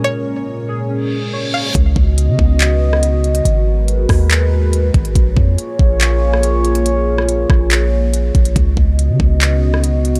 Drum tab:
HH |----------------|x---x---x---x-xx|x---x-o-x---x-xx|x---x---x---x-xx|
CP |----------------|--------x-------|--------x-------|--------x-------|
SD |----------------|-----------r----|------r---------|-----------r----|
BD |----------------|o-o---o---------|------o-------o-|o-o---o---------|

HH |x---x---x---x-xx|x---x---x---x-xx|
CP |--------x-------|--------x-------|
SD |---r--r---------|-----------r----|
BD |------o-------o-|o-o---o---------|